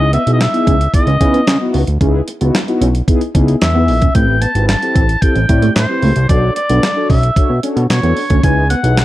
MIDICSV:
0, 0, Header, 1, 7, 480
1, 0, Start_track
1, 0, Tempo, 535714
1, 1798, Time_signature, 4, 2, 24, 8
1, 8108, End_track
2, 0, Start_track
2, 0, Title_t, "Oboe"
2, 0, Program_c, 0, 68
2, 0, Note_on_c, 0, 75, 111
2, 117, Note_off_c, 0, 75, 0
2, 122, Note_on_c, 0, 76, 97
2, 285, Note_off_c, 0, 76, 0
2, 298, Note_on_c, 0, 75, 75
2, 368, Note_on_c, 0, 76, 101
2, 381, Note_off_c, 0, 75, 0
2, 840, Note_off_c, 0, 76, 0
2, 846, Note_on_c, 0, 75, 97
2, 1526, Note_off_c, 0, 75, 0
2, 3239, Note_on_c, 0, 76, 90
2, 3685, Note_off_c, 0, 76, 0
2, 3717, Note_on_c, 0, 79, 103
2, 3954, Note_on_c, 0, 81, 103
2, 3968, Note_off_c, 0, 79, 0
2, 4185, Note_off_c, 0, 81, 0
2, 4191, Note_on_c, 0, 81, 100
2, 4670, Note_on_c, 0, 79, 113
2, 4684, Note_off_c, 0, 81, 0
2, 5149, Note_off_c, 0, 79, 0
2, 5155, Note_on_c, 0, 72, 99
2, 5603, Note_off_c, 0, 72, 0
2, 5636, Note_on_c, 0, 74, 86
2, 5860, Note_off_c, 0, 74, 0
2, 5875, Note_on_c, 0, 74, 99
2, 6323, Note_off_c, 0, 74, 0
2, 6360, Note_on_c, 0, 76, 86
2, 6804, Note_off_c, 0, 76, 0
2, 7082, Note_on_c, 0, 73, 87
2, 7527, Note_off_c, 0, 73, 0
2, 7557, Note_on_c, 0, 80, 112
2, 7781, Note_off_c, 0, 80, 0
2, 7798, Note_on_c, 0, 78, 99
2, 8108, Note_off_c, 0, 78, 0
2, 8108, End_track
3, 0, Start_track
3, 0, Title_t, "Analog polysynth"
3, 0, Program_c, 1, 90
3, 235, Note_on_c, 1, 59, 78
3, 236, Note_on_c, 1, 63, 71
3, 240, Note_on_c, 1, 64, 73
3, 243, Note_on_c, 1, 68, 73
3, 360, Note_off_c, 1, 59, 0
3, 360, Note_off_c, 1, 63, 0
3, 362, Note_off_c, 1, 64, 0
3, 363, Note_off_c, 1, 68, 0
3, 475, Note_on_c, 1, 59, 78
3, 477, Note_on_c, 1, 63, 77
3, 480, Note_on_c, 1, 64, 72
3, 482, Note_on_c, 1, 68, 96
3, 661, Note_off_c, 1, 59, 0
3, 662, Note_off_c, 1, 63, 0
3, 663, Note_off_c, 1, 64, 0
3, 664, Note_off_c, 1, 68, 0
3, 837, Note_on_c, 1, 59, 76
3, 840, Note_on_c, 1, 63, 64
3, 843, Note_on_c, 1, 64, 71
3, 845, Note_on_c, 1, 68, 78
3, 961, Note_off_c, 1, 59, 0
3, 962, Note_off_c, 1, 63, 0
3, 964, Note_off_c, 1, 64, 0
3, 964, Note_off_c, 1, 68, 0
3, 1076, Note_on_c, 1, 59, 78
3, 1080, Note_on_c, 1, 63, 73
3, 1080, Note_on_c, 1, 64, 72
3, 1084, Note_on_c, 1, 71, 90
3, 1261, Note_off_c, 1, 59, 0
3, 1263, Note_off_c, 1, 63, 0
3, 1264, Note_off_c, 1, 64, 0
3, 1266, Note_off_c, 1, 71, 0
3, 1437, Note_on_c, 1, 59, 84
3, 1439, Note_on_c, 1, 63, 84
3, 1443, Note_on_c, 1, 64, 76
3, 1443, Note_on_c, 1, 66, 106
3, 1622, Note_off_c, 1, 59, 0
3, 1623, Note_off_c, 1, 63, 0
3, 1625, Note_off_c, 1, 64, 0
3, 1625, Note_off_c, 1, 66, 0
3, 1797, Note_on_c, 1, 59, 90
3, 1799, Note_on_c, 1, 63, 84
3, 1802, Note_on_c, 1, 64, 89
3, 1804, Note_on_c, 1, 68, 99
3, 1982, Note_off_c, 1, 59, 0
3, 1983, Note_off_c, 1, 63, 0
3, 1984, Note_off_c, 1, 64, 0
3, 1986, Note_off_c, 1, 68, 0
3, 2158, Note_on_c, 1, 59, 89
3, 2161, Note_on_c, 1, 63, 81
3, 2164, Note_on_c, 1, 64, 82
3, 2165, Note_on_c, 1, 66, 90
3, 2281, Note_off_c, 1, 59, 0
3, 2282, Note_off_c, 1, 63, 0
3, 2284, Note_off_c, 1, 64, 0
3, 2285, Note_off_c, 1, 66, 0
3, 2399, Note_on_c, 1, 59, 94
3, 2402, Note_on_c, 1, 63, 89
3, 2403, Note_on_c, 1, 64, 87
3, 2405, Note_on_c, 1, 66, 100
3, 2583, Note_off_c, 1, 59, 0
3, 2584, Note_off_c, 1, 63, 0
3, 2585, Note_off_c, 1, 64, 0
3, 2586, Note_off_c, 1, 66, 0
3, 2757, Note_on_c, 1, 59, 88
3, 2759, Note_on_c, 1, 63, 82
3, 2762, Note_on_c, 1, 64, 83
3, 2764, Note_on_c, 1, 68, 103
3, 2881, Note_off_c, 1, 59, 0
3, 2882, Note_off_c, 1, 63, 0
3, 2883, Note_off_c, 1, 64, 0
3, 2884, Note_off_c, 1, 68, 0
3, 2999, Note_on_c, 1, 59, 92
3, 3001, Note_on_c, 1, 63, 84
3, 3003, Note_on_c, 1, 64, 79
3, 3005, Note_on_c, 1, 68, 97
3, 3183, Note_off_c, 1, 59, 0
3, 3184, Note_off_c, 1, 63, 0
3, 3185, Note_off_c, 1, 64, 0
3, 3186, Note_off_c, 1, 68, 0
3, 3360, Note_on_c, 1, 59, 81
3, 3362, Note_on_c, 1, 63, 60
3, 3365, Note_on_c, 1, 64, 64
3, 3367, Note_on_c, 1, 68, 75
3, 3543, Note_off_c, 1, 59, 0
3, 3544, Note_off_c, 1, 63, 0
3, 3546, Note_off_c, 1, 64, 0
3, 3547, Note_off_c, 1, 68, 0
3, 3719, Note_on_c, 1, 60, 76
3, 3720, Note_on_c, 1, 64, 72
3, 3723, Note_on_c, 1, 67, 75
3, 3725, Note_on_c, 1, 71, 89
3, 3903, Note_off_c, 1, 60, 0
3, 3904, Note_off_c, 1, 64, 0
3, 3905, Note_off_c, 1, 67, 0
3, 3906, Note_off_c, 1, 71, 0
3, 4080, Note_on_c, 1, 60, 73
3, 4083, Note_on_c, 1, 64, 68
3, 4085, Note_on_c, 1, 67, 67
3, 4088, Note_on_c, 1, 71, 84
3, 4202, Note_off_c, 1, 60, 0
3, 4203, Note_off_c, 1, 64, 0
3, 4205, Note_off_c, 1, 67, 0
3, 4206, Note_off_c, 1, 71, 0
3, 4320, Note_on_c, 1, 60, 79
3, 4323, Note_on_c, 1, 64, 67
3, 4326, Note_on_c, 1, 67, 71
3, 4327, Note_on_c, 1, 69, 97
3, 4504, Note_off_c, 1, 60, 0
3, 4505, Note_off_c, 1, 64, 0
3, 4506, Note_off_c, 1, 67, 0
3, 4507, Note_off_c, 1, 69, 0
3, 4678, Note_on_c, 1, 60, 76
3, 4681, Note_on_c, 1, 64, 74
3, 4683, Note_on_c, 1, 67, 69
3, 4685, Note_on_c, 1, 69, 77
3, 4801, Note_off_c, 1, 60, 0
3, 4803, Note_off_c, 1, 64, 0
3, 4804, Note_off_c, 1, 67, 0
3, 4805, Note_off_c, 1, 69, 0
3, 4915, Note_on_c, 1, 60, 70
3, 4918, Note_on_c, 1, 64, 76
3, 4921, Note_on_c, 1, 67, 76
3, 4924, Note_on_c, 1, 74, 87
3, 5101, Note_off_c, 1, 60, 0
3, 5102, Note_off_c, 1, 64, 0
3, 5104, Note_off_c, 1, 67, 0
3, 5105, Note_off_c, 1, 74, 0
3, 5275, Note_on_c, 1, 60, 71
3, 5278, Note_on_c, 1, 64, 66
3, 5279, Note_on_c, 1, 67, 72
3, 5281, Note_on_c, 1, 71, 87
3, 5461, Note_off_c, 1, 60, 0
3, 5462, Note_off_c, 1, 64, 0
3, 5463, Note_off_c, 1, 67, 0
3, 5464, Note_off_c, 1, 71, 0
3, 5635, Note_on_c, 1, 62, 76
3, 5639, Note_on_c, 1, 66, 79
3, 5640, Note_on_c, 1, 69, 71
3, 5641, Note_on_c, 1, 73, 91
3, 5821, Note_off_c, 1, 62, 0
3, 5823, Note_off_c, 1, 66, 0
3, 5823, Note_off_c, 1, 69, 0
3, 5824, Note_off_c, 1, 73, 0
3, 5997, Note_on_c, 1, 62, 76
3, 5998, Note_on_c, 1, 66, 71
3, 5999, Note_on_c, 1, 69, 72
3, 6003, Note_on_c, 1, 71, 79
3, 6120, Note_off_c, 1, 62, 0
3, 6121, Note_off_c, 1, 66, 0
3, 6122, Note_off_c, 1, 69, 0
3, 6124, Note_off_c, 1, 71, 0
3, 6235, Note_on_c, 1, 62, 85
3, 6238, Note_on_c, 1, 66, 81
3, 6240, Note_on_c, 1, 69, 77
3, 6242, Note_on_c, 1, 73, 94
3, 6421, Note_off_c, 1, 62, 0
3, 6422, Note_off_c, 1, 66, 0
3, 6424, Note_off_c, 1, 69, 0
3, 6424, Note_off_c, 1, 73, 0
3, 6595, Note_on_c, 1, 62, 73
3, 6597, Note_on_c, 1, 66, 74
3, 6600, Note_on_c, 1, 69, 70
3, 6603, Note_on_c, 1, 73, 83
3, 6719, Note_off_c, 1, 62, 0
3, 6721, Note_off_c, 1, 66, 0
3, 6722, Note_off_c, 1, 69, 0
3, 6723, Note_off_c, 1, 73, 0
3, 6836, Note_on_c, 1, 62, 73
3, 6839, Note_on_c, 1, 66, 66
3, 6840, Note_on_c, 1, 69, 70
3, 6843, Note_on_c, 1, 73, 77
3, 7021, Note_off_c, 1, 62, 0
3, 7023, Note_off_c, 1, 66, 0
3, 7024, Note_off_c, 1, 69, 0
3, 7025, Note_off_c, 1, 73, 0
3, 7197, Note_on_c, 1, 62, 76
3, 7201, Note_on_c, 1, 66, 67
3, 7202, Note_on_c, 1, 69, 68
3, 7203, Note_on_c, 1, 73, 85
3, 7382, Note_off_c, 1, 62, 0
3, 7384, Note_off_c, 1, 66, 0
3, 7384, Note_off_c, 1, 69, 0
3, 7385, Note_off_c, 1, 73, 0
3, 7556, Note_on_c, 1, 63, 74
3, 7559, Note_on_c, 1, 64, 74
3, 7560, Note_on_c, 1, 68, 67
3, 7564, Note_on_c, 1, 71, 92
3, 7741, Note_off_c, 1, 63, 0
3, 7743, Note_off_c, 1, 64, 0
3, 7744, Note_off_c, 1, 68, 0
3, 7745, Note_off_c, 1, 71, 0
3, 7917, Note_on_c, 1, 63, 77
3, 7919, Note_on_c, 1, 64, 60
3, 7922, Note_on_c, 1, 68, 70
3, 7925, Note_on_c, 1, 71, 82
3, 8041, Note_off_c, 1, 63, 0
3, 8041, Note_off_c, 1, 64, 0
3, 8043, Note_off_c, 1, 68, 0
3, 8045, Note_off_c, 1, 71, 0
3, 8108, End_track
4, 0, Start_track
4, 0, Title_t, "Clean electric guitar"
4, 0, Program_c, 2, 27
4, 118, Note_on_c, 2, 59, 90
4, 193, Note_off_c, 2, 59, 0
4, 598, Note_on_c, 2, 61, 70
4, 673, Note_off_c, 2, 61, 0
4, 959, Note_on_c, 2, 61, 68
4, 1034, Note_off_c, 2, 61, 0
4, 1198, Note_on_c, 2, 59, 84
4, 1273, Note_off_c, 2, 59, 0
4, 1557, Note_on_c, 2, 59, 80
4, 1633, Note_off_c, 2, 59, 0
4, 1799, Note_on_c, 2, 61, 76
4, 1874, Note_off_c, 2, 61, 0
4, 2158, Note_on_c, 2, 59, 73
4, 2233, Note_off_c, 2, 59, 0
4, 2518, Note_on_c, 2, 61, 63
4, 2593, Note_off_c, 2, 61, 0
4, 2998, Note_on_c, 2, 61, 75
4, 3073, Note_off_c, 2, 61, 0
4, 3359, Note_on_c, 2, 59, 84
4, 3434, Note_off_c, 2, 59, 0
4, 3597, Note_on_c, 2, 61, 64
4, 3672, Note_off_c, 2, 61, 0
4, 3715, Note_on_c, 2, 57, 84
4, 3791, Note_off_c, 2, 57, 0
4, 3957, Note_on_c, 2, 59, 84
4, 4032, Note_off_c, 2, 59, 0
4, 4436, Note_on_c, 2, 60, 77
4, 4512, Note_off_c, 2, 60, 0
4, 4796, Note_on_c, 2, 60, 64
4, 4872, Note_off_c, 2, 60, 0
4, 5035, Note_on_c, 2, 57, 83
4, 5111, Note_off_c, 2, 57, 0
4, 5397, Note_on_c, 2, 57, 87
4, 5472, Note_off_c, 2, 57, 0
4, 5639, Note_on_c, 2, 59, 85
4, 5714, Note_off_c, 2, 59, 0
4, 6001, Note_on_c, 2, 59, 76
4, 6075, Note_off_c, 2, 59, 0
4, 6359, Note_on_c, 2, 61, 68
4, 6434, Note_off_c, 2, 61, 0
4, 6838, Note_on_c, 2, 61, 70
4, 6913, Note_off_c, 2, 61, 0
4, 7198, Note_on_c, 2, 59, 81
4, 7273, Note_off_c, 2, 59, 0
4, 7439, Note_on_c, 2, 61, 73
4, 7514, Note_off_c, 2, 61, 0
4, 7561, Note_on_c, 2, 61, 90
4, 7635, Note_off_c, 2, 61, 0
4, 7801, Note_on_c, 2, 59, 82
4, 7876, Note_off_c, 2, 59, 0
4, 8108, End_track
5, 0, Start_track
5, 0, Title_t, "Analog synth bass"
5, 0, Program_c, 3, 38
5, 0, Note_on_c, 3, 37, 106
5, 163, Note_off_c, 3, 37, 0
5, 241, Note_on_c, 3, 35, 83
5, 429, Note_off_c, 3, 35, 0
5, 600, Note_on_c, 3, 37, 84
5, 788, Note_off_c, 3, 37, 0
5, 957, Note_on_c, 3, 37, 96
5, 1052, Note_off_c, 3, 37, 0
5, 1081, Note_on_c, 3, 49, 108
5, 1269, Note_off_c, 3, 49, 0
5, 1320, Note_on_c, 3, 49, 110
5, 1414, Note_off_c, 3, 49, 0
5, 1561, Note_on_c, 3, 37, 87
5, 1655, Note_off_c, 3, 37, 0
5, 1681, Note_on_c, 3, 38, 82
5, 1774, Note_off_c, 3, 38, 0
5, 1799, Note_on_c, 3, 37, 107
5, 1988, Note_off_c, 3, 37, 0
5, 2161, Note_on_c, 3, 37, 89
5, 2254, Note_off_c, 3, 37, 0
5, 2520, Note_on_c, 3, 35, 86
5, 2708, Note_off_c, 3, 35, 0
5, 3001, Note_on_c, 3, 37, 94
5, 3189, Note_off_c, 3, 37, 0
5, 3243, Note_on_c, 3, 40, 88
5, 3481, Note_on_c, 3, 34, 97
5, 3494, Note_off_c, 3, 40, 0
5, 3669, Note_off_c, 3, 34, 0
5, 3718, Note_on_c, 3, 33, 97
5, 4001, Note_off_c, 3, 33, 0
5, 4078, Note_on_c, 3, 32, 90
5, 4267, Note_off_c, 3, 32, 0
5, 4439, Note_on_c, 3, 33, 78
5, 4628, Note_off_c, 3, 33, 0
5, 4799, Note_on_c, 3, 33, 96
5, 4893, Note_off_c, 3, 33, 0
5, 4922, Note_on_c, 3, 45, 102
5, 5109, Note_off_c, 3, 45, 0
5, 5160, Note_on_c, 3, 45, 105
5, 5254, Note_off_c, 3, 45, 0
5, 5400, Note_on_c, 3, 37, 96
5, 5494, Note_off_c, 3, 37, 0
5, 5522, Note_on_c, 3, 36, 96
5, 5615, Note_off_c, 3, 36, 0
5, 5640, Note_on_c, 3, 35, 113
5, 5828, Note_off_c, 3, 35, 0
5, 6002, Note_on_c, 3, 35, 98
5, 6095, Note_off_c, 3, 35, 0
5, 6360, Note_on_c, 3, 35, 94
5, 6548, Note_off_c, 3, 35, 0
5, 6716, Note_on_c, 3, 47, 87
5, 6811, Note_off_c, 3, 47, 0
5, 6956, Note_on_c, 3, 47, 94
5, 7052, Note_off_c, 3, 47, 0
5, 7078, Note_on_c, 3, 47, 106
5, 7173, Note_off_c, 3, 47, 0
5, 7196, Note_on_c, 3, 40, 84
5, 7291, Note_off_c, 3, 40, 0
5, 7441, Note_on_c, 3, 38, 87
5, 7534, Note_off_c, 3, 38, 0
5, 7558, Note_on_c, 3, 37, 111
5, 7842, Note_off_c, 3, 37, 0
5, 7916, Note_on_c, 3, 35, 94
5, 8106, Note_off_c, 3, 35, 0
5, 8108, End_track
6, 0, Start_track
6, 0, Title_t, "Muted clean electric guitar strokes"
6, 1078, Note_on_c, 9, 29, 39
6, 1168, Note_off_c, 9, 29, 0
6, 2040, Note_on_c, 9, 29, 48
6, 2130, Note_off_c, 9, 29, 0
6, 3477, Note_on_c, 9, 29, 40
6, 3567, Note_off_c, 9, 29, 0
6, 3837, Note_on_c, 9, 29, 43
6, 3927, Note_off_c, 9, 29, 0
6, 4918, Note_on_c, 9, 29, 40
6, 5007, Note_off_c, 9, 29, 0
6, 5881, Note_on_c, 9, 29, 43
6, 5970, Note_off_c, 9, 29, 0
6, 7319, Note_on_c, 9, 29, 47
6, 7408, Note_off_c, 9, 29, 0
6, 7681, Note_on_c, 9, 29, 43
6, 7770, Note_off_c, 9, 29, 0
6, 8108, End_track
7, 0, Start_track
7, 0, Title_t, "Drums"
7, 118, Note_on_c, 9, 42, 69
7, 208, Note_off_c, 9, 42, 0
7, 241, Note_on_c, 9, 42, 55
7, 331, Note_off_c, 9, 42, 0
7, 365, Note_on_c, 9, 38, 105
7, 365, Note_on_c, 9, 42, 94
7, 374, Note_on_c, 9, 39, 80
7, 454, Note_off_c, 9, 42, 0
7, 455, Note_off_c, 9, 38, 0
7, 464, Note_off_c, 9, 39, 0
7, 485, Note_on_c, 9, 42, 35
7, 575, Note_off_c, 9, 42, 0
7, 601, Note_on_c, 9, 36, 112
7, 604, Note_on_c, 9, 42, 77
7, 691, Note_off_c, 9, 36, 0
7, 694, Note_off_c, 9, 42, 0
7, 725, Note_on_c, 9, 42, 55
7, 815, Note_off_c, 9, 42, 0
7, 839, Note_on_c, 9, 36, 114
7, 844, Note_on_c, 9, 42, 96
7, 929, Note_off_c, 9, 36, 0
7, 933, Note_off_c, 9, 42, 0
7, 959, Note_on_c, 9, 42, 36
7, 1048, Note_off_c, 9, 42, 0
7, 1082, Note_on_c, 9, 36, 83
7, 1082, Note_on_c, 9, 42, 89
7, 1171, Note_off_c, 9, 36, 0
7, 1171, Note_off_c, 9, 42, 0
7, 1202, Note_on_c, 9, 42, 37
7, 1291, Note_off_c, 9, 42, 0
7, 1320, Note_on_c, 9, 42, 86
7, 1322, Note_on_c, 9, 38, 110
7, 1331, Note_on_c, 9, 39, 96
7, 1409, Note_off_c, 9, 42, 0
7, 1411, Note_off_c, 9, 38, 0
7, 1421, Note_off_c, 9, 39, 0
7, 1559, Note_on_c, 9, 46, 60
7, 1649, Note_off_c, 9, 46, 0
7, 1679, Note_on_c, 9, 42, 52
7, 1768, Note_off_c, 9, 42, 0
7, 1799, Note_on_c, 9, 36, 98
7, 1799, Note_on_c, 9, 42, 86
7, 1889, Note_off_c, 9, 36, 0
7, 1889, Note_off_c, 9, 42, 0
7, 2039, Note_on_c, 9, 42, 74
7, 2129, Note_off_c, 9, 42, 0
7, 2159, Note_on_c, 9, 42, 53
7, 2248, Note_off_c, 9, 42, 0
7, 2282, Note_on_c, 9, 38, 100
7, 2282, Note_on_c, 9, 42, 86
7, 2291, Note_on_c, 9, 39, 84
7, 2372, Note_off_c, 9, 38, 0
7, 2372, Note_off_c, 9, 42, 0
7, 2381, Note_off_c, 9, 39, 0
7, 2403, Note_on_c, 9, 42, 34
7, 2493, Note_off_c, 9, 42, 0
7, 2523, Note_on_c, 9, 42, 75
7, 2613, Note_off_c, 9, 42, 0
7, 2641, Note_on_c, 9, 42, 51
7, 2731, Note_off_c, 9, 42, 0
7, 2758, Note_on_c, 9, 36, 106
7, 2761, Note_on_c, 9, 42, 90
7, 2848, Note_off_c, 9, 36, 0
7, 2851, Note_off_c, 9, 42, 0
7, 2878, Note_on_c, 9, 42, 37
7, 2968, Note_off_c, 9, 42, 0
7, 3001, Note_on_c, 9, 36, 90
7, 3001, Note_on_c, 9, 42, 79
7, 3090, Note_off_c, 9, 36, 0
7, 3091, Note_off_c, 9, 42, 0
7, 3120, Note_on_c, 9, 42, 41
7, 3210, Note_off_c, 9, 42, 0
7, 3239, Note_on_c, 9, 42, 97
7, 3241, Note_on_c, 9, 38, 118
7, 3250, Note_on_c, 9, 39, 82
7, 3329, Note_off_c, 9, 42, 0
7, 3331, Note_off_c, 9, 38, 0
7, 3340, Note_off_c, 9, 39, 0
7, 3479, Note_on_c, 9, 46, 58
7, 3568, Note_off_c, 9, 46, 0
7, 3598, Note_on_c, 9, 42, 51
7, 3602, Note_on_c, 9, 36, 96
7, 3688, Note_off_c, 9, 42, 0
7, 3691, Note_off_c, 9, 36, 0
7, 3718, Note_on_c, 9, 36, 100
7, 3718, Note_on_c, 9, 42, 98
7, 3807, Note_off_c, 9, 42, 0
7, 3808, Note_off_c, 9, 36, 0
7, 3957, Note_on_c, 9, 42, 81
7, 4046, Note_off_c, 9, 42, 0
7, 4079, Note_on_c, 9, 42, 61
7, 4169, Note_off_c, 9, 42, 0
7, 4200, Note_on_c, 9, 42, 94
7, 4201, Note_on_c, 9, 38, 96
7, 4210, Note_on_c, 9, 39, 80
7, 4290, Note_off_c, 9, 38, 0
7, 4290, Note_off_c, 9, 42, 0
7, 4299, Note_off_c, 9, 39, 0
7, 4323, Note_on_c, 9, 42, 34
7, 4412, Note_off_c, 9, 42, 0
7, 4440, Note_on_c, 9, 36, 99
7, 4441, Note_on_c, 9, 42, 70
7, 4529, Note_off_c, 9, 36, 0
7, 4530, Note_off_c, 9, 42, 0
7, 4562, Note_on_c, 9, 42, 49
7, 4651, Note_off_c, 9, 42, 0
7, 4678, Note_on_c, 9, 36, 102
7, 4680, Note_on_c, 9, 42, 86
7, 4768, Note_off_c, 9, 36, 0
7, 4770, Note_off_c, 9, 42, 0
7, 4798, Note_on_c, 9, 42, 36
7, 4888, Note_off_c, 9, 42, 0
7, 4920, Note_on_c, 9, 36, 87
7, 4920, Note_on_c, 9, 42, 75
7, 5009, Note_off_c, 9, 42, 0
7, 5010, Note_off_c, 9, 36, 0
7, 5039, Note_on_c, 9, 42, 43
7, 5129, Note_off_c, 9, 42, 0
7, 5159, Note_on_c, 9, 42, 85
7, 5161, Note_on_c, 9, 38, 118
7, 5170, Note_on_c, 9, 39, 100
7, 5248, Note_off_c, 9, 42, 0
7, 5251, Note_off_c, 9, 38, 0
7, 5260, Note_off_c, 9, 39, 0
7, 5398, Note_on_c, 9, 46, 57
7, 5487, Note_off_c, 9, 46, 0
7, 5517, Note_on_c, 9, 42, 59
7, 5607, Note_off_c, 9, 42, 0
7, 5638, Note_on_c, 9, 36, 99
7, 5640, Note_on_c, 9, 42, 80
7, 5728, Note_off_c, 9, 36, 0
7, 5729, Note_off_c, 9, 42, 0
7, 5879, Note_on_c, 9, 42, 79
7, 5969, Note_off_c, 9, 42, 0
7, 5999, Note_on_c, 9, 42, 58
7, 6088, Note_off_c, 9, 42, 0
7, 6122, Note_on_c, 9, 38, 97
7, 6122, Note_on_c, 9, 42, 85
7, 6131, Note_on_c, 9, 39, 78
7, 6212, Note_off_c, 9, 38, 0
7, 6212, Note_off_c, 9, 42, 0
7, 6221, Note_off_c, 9, 39, 0
7, 6360, Note_on_c, 9, 36, 93
7, 6363, Note_on_c, 9, 46, 79
7, 6449, Note_off_c, 9, 36, 0
7, 6453, Note_off_c, 9, 46, 0
7, 6481, Note_on_c, 9, 42, 53
7, 6571, Note_off_c, 9, 42, 0
7, 6598, Note_on_c, 9, 36, 113
7, 6602, Note_on_c, 9, 42, 87
7, 6687, Note_off_c, 9, 36, 0
7, 6691, Note_off_c, 9, 42, 0
7, 6839, Note_on_c, 9, 42, 76
7, 6929, Note_off_c, 9, 42, 0
7, 6959, Note_on_c, 9, 42, 40
7, 7049, Note_off_c, 9, 42, 0
7, 7079, Note_on_c, 9, 42, 102
7, 7081, Note_on_c, 9, 38, 117
7, 7090, Note_on_c, 9, 39, 93
7, 7169, Note_off_c, 9, 42, 0
7, 7171, Note_off_c, 9, 38, 0
7, 7180, Note_off_c, 9, 39, 0
7, 7199, Note_on_c, 9, 42, 34
7, 7288, Note_off_c, 9, 42, 0
7, 7317, Note_on_c, 9, 46, 61
7, 7407, Note_off_c, 9, 46, 0
7, 7436, Note_on_c, 9, 42, 56
7, 7440, Note_on_c, 9, 36, 101
7, 7526, Note_off_c, 9, 42, 0
7, 7530, Note_off_c, 9, 36, 0
7, 7558, Note_on_c, 9, 36, 100
7, 7559, Note_on_c, 9, 42, 90
7, 7647, Note_off_c, 9, 36, 0
7, 7648, Note_off_c, 9, 42, 0
7, 7798, Note_on_c, 9, 42, 84
7, 7887, Note_off_c, 9, 42, 0
7, 7921, Note_on_c, 9, 42, 61
7, 8010, Note_off_c, 9, 42, 0
7, 8041, Note_on_c, 9, 42, 83
7, 8042, Note_on_c, 9, 38, 101
7, 8050, Note_on_c, 9, 39, 91
7, 8108, Note_off_c, 9, 38, 0
7, 8108, Note_off_c, 9, 39, 0
7, 8108, Note_off_c, 9, 42, 0
7, 8108, End_track
0, 0, End_of_file